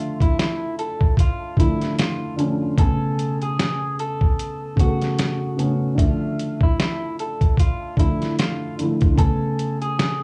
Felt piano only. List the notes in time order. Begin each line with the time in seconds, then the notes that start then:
Already playing: D3 F3 A3 E5
1.57 D3 F3 A3 E4
2.36 D3 F3 A3 C#4
2.78 B2 A3 B3 G#5
2.84 C#3
4.76 C#3 A3 B3 G#4
4.86 A4
5.56 C#3 A3 B3 C#4
5.95 D3 E3 A3 E5
6.02 F3
7.97 D3 F3 A3 E4
8.78 D3 F3 A3 E4
9.15 C#3 A3 B3 G#5